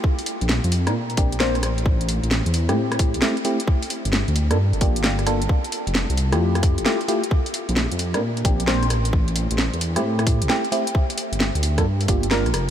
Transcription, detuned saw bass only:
X:1
M:4/4
L:1/16
Q:"Swing 16ths" 1/4=132
K:Aphr
V:1 name="Detuned saw bass" clef=bass
z3 B,,,2 F,,2 B,,3 B,,, B,,,3 A,,,2- | A,,,3 A,,,2 E,,2 A,,4 A,,, z4 | z3 G,,,2 D,,2 G,,2 G,,, B,,, G,,,4- G,,, | z3 F,,,2 C,,2 F,,4 F,,, z4 |
z3 B,,,2 F,,2 B,,3 B,,, B,,,3 A,,,2- | A,,,3 A,,,2 E,,2 A,,4 A,,, z4 | z3 G,,,2 D,,2 G,,3 G,,, G,,,2 B,,, F,,,2 |]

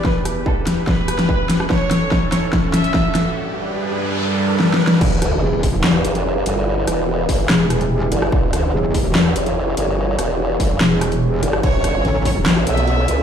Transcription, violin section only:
X:1
M:4/4
L:1/8
Q:1/4=145
K:Edor
V:1 name="Violin section"
B z A z B4 | c3 c z e3 | z8 | z8 |
z8 | z8 | z8 | c3 c z e3 |]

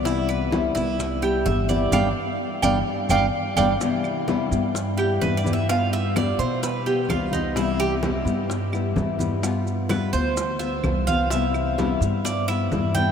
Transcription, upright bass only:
X:1
M:4/4
L:1/8
Q:1/4=128
K:C
V:1 name="Upright bass" clef=bass
C,,3 C,,3 G,,,2 | G,,, z2 G,,, z G,,, z G,,, | z3 G,,3 G,,2- | G,,3 B,,3 C,,2- |
C,,3 G,,3 G,,2- | G,,3 D,,3 C,,2- | C,,3 G,,3 G,,2 |]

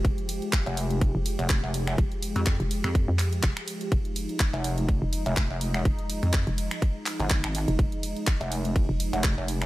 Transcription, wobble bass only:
X:1
M:4/4
L:1/16
Q:"Swing 16ths" 1/4=124
K:Fm
V:1 name="Wobble bass" clef=bass
z4 z F,,,4 z2 F,,,2 F,,,3 | z3 F,,2 z2 F,,2 z6 z | z4 z F,,,4 z2 F,,,2 F,,,3 | z3 F,,2 z6 G,,,2 A,,,2 z |
z4 z F,,,4 z2 F,,,2 F,,,3 |]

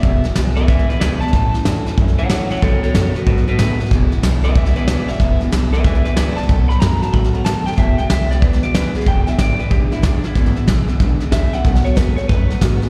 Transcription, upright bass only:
X:1
M:4/4
L:1/8
Q:"Swing" 1/4=186
K:E
V:1 name="Upright bass" clef=bass
E,,, z B,,, z C,, z C,, z | A,,, z E,, z F,, z E,, ^A,,, | B,,, z F,, z G,, z A,, z | E,,, z B,,, z C,, z B,,, G,,, |
E,,, z B,,, z C,, z C,, z | B,,, z F,, z A,, z F,, D,, | E,,, z B,,, z C,, z C,, z | E,,, z G,,, z B,,, z C,, z |
G,,, z B,,, z B,,, z C,, z | B,,, z D,, z F,, z G,, z |]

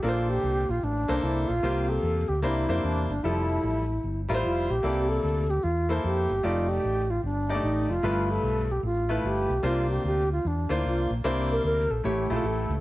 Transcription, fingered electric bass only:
X:1
M:4/4
L:1/8
Q:"Swing" 1/4=150
K:Cmix
V:1 name="Fingered electric bass" clef=bass
B,,,2 C,, B,,, A,,, C,, C,, B,,, | C,,2 E,, D,, C,, F,, E,, G,,, | F,,,2 A,,,2 G,,, A,,, F,,, B,,, | C,,2 D,,2 E,,2 F,, G,,, |
F,,,2 A,,,2 G,,,2 A,,, F,,, | G,,,2 =B,,,2 A,,,2 G,,, B,,, | C,,2 D,,2 E,, D,, C,, B,,, | C,,2 D,, B,,, A,,, B,,, A,,, ^C,, |]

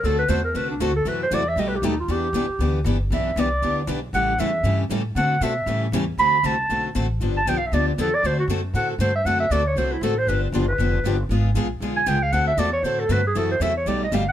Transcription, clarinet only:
X:1
M:4/4
L:1/8
Q:"Swing" 1/4=234
K:Dmix
V:1 name="Clarinet"
A B c _B =B D F A | B c d e (3^d B G ^D =F | G6 z2 | e2 d3 z3 |
f2 e3 z3 | f2 e3 z3 | b2 a3 z3 | z a (3g =f e d =F A d |
c F z2 f A c e | f e d ^c =c E A c | B D =F B4- B | z4 z ^g =g ^e |
f e d ^c =c A B ^G | A c e ^c d ^d =f ^f |]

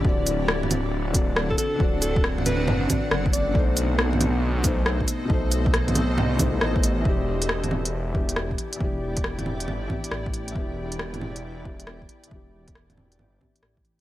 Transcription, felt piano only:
X:1
M:4/4
L:1/16
Q:"Swing 16ths" 1/4=137
K:Dmix
V:1 name="Felt piano"
[D,CFd]8- [D,CFd]2 [D,CFd] z4 z | [D,CFd]8- [D,CFd]2 [D,CFd] z4 z | [B,,A,^Dc]8- [B,,A,Dc]2 [B,,A,Dc] z4 z | [B,,A,^Dc]8- [B,,A,Dc]2 [B,,A,Dc] [B,,A,Dc]4- [B,,A,Dc] |
[E,B,DG]8- [E,B,DG]2 [E,B,DG] z4 z | [E,B,DG]8- [E,B,DG]2 [E,B,DG] z4 z | [E,B,DG]8- [E,B,DG]2 [E,B,DG] z4 z | [E,B,DG]8- [E,B,DG]2 [E,B,DG] z4 z |]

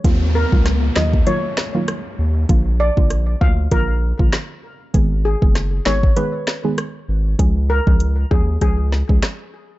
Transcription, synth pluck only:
X:1
M:4/4
L:1/16
Q:"Swing 16ths" 1/4=98
K:Ebm
V:1 name="Synth pluck"
[E,G,B,F] z2 [E,G,B,F]3 [E,G,B,F]2 [E,G,B,F]3 [E,G,B,F] z4 | [=D,F,B,F] z2 [D,F,B,F]3 [D,F,B,F]2 [D,F,B,F]3 [D,F,B,F] z4 | [E,A,CA] z2 [E,A,CA]3 [E,A,CA]2 [E,A,CA]3 [E,A,CA] z4 | [F,A,DA] z2 [F,A,DA]3 [F,A,DA]2 [F,A,DA]3 [F,A,DA] z4 |]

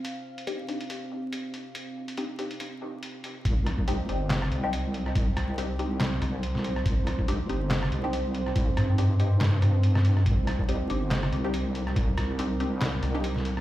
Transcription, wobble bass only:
X:1
M:4/4
L:1/8
Q:"Swing 16ths" 1/4=141
K:Cm
V:1 name="Wobble bass" clef=bass
z8 | z8 | C,,3 G,,,2 C,,3- | C,, C,,4 C,,3 |
C,,3 G,,,2 C,,3- | C,, G,,4 G,,3 | C,,3 G,,,2 C,,3- | C,, C,,4 C,,3 |]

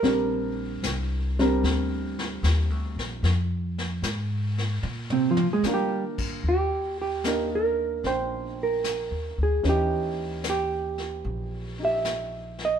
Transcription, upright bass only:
X:1
M:4/4
L:1/8
Q:"Swing" 1/4=75
K:Bb
V:1 name="Upright bass" clef=bass
B,,,2 C,,2 D,,2 (3E,, D,, B,,, | F,,2 _A,,2 B,,2 D,2 | [K:Eb] E,,4 B,,,2- (3B,,, E,, D,, | E,,4 B,,,4 |]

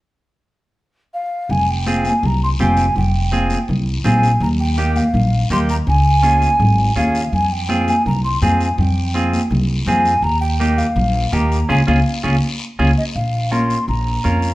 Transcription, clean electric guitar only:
X:1
M:4/4
L:1/8
Q:1/4=165
K:Fm
V:1 name="Clean electric guitar"
z8 | z2 [CFA] z3 [CFG] z | z2 [CFA] z3 [CFA] z | z2 [B,EG] z3 [B,EG] z |
z2 [DFA] z3 [DFA] z | z2 [CFA] z3 [CFA] z | z2 [CFA] z3 [CFA] z | z2 [B,EG] z3 [B,EG] z |
[DFA] [DFA] z [DFA] z2 [DFA] z | z2 [DFB] z3 [DFB] z |]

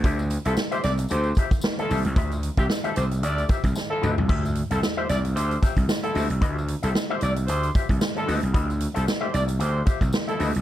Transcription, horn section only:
X:1
M:4/4
L:1/16
Q:"Swing 16ths" 1/4=113
K:Dm
V:1 name="Horn section"
z3 [F,EA] z [A,Gc] [A,Gd] z [A,Gc]2 z3 [F,EA]2 z | z3 [E,CG] z [F,EA] [A,Gc] z [A,Gd]2 z3 [F,EA]2 z | z3 [F,EA] z [A,Gc] [A,Gd] z [A,Gc]2 z3 [F,EA]2 z | z3 [F,EA] z [A,Gc] [A,Gd] z [A,Gc]2 z3 [F,EA]2 z |
z3 [F,EA] z [A,Gc] [A,Gd] z [A,Gc]2 z3 [F,EA]2 z |]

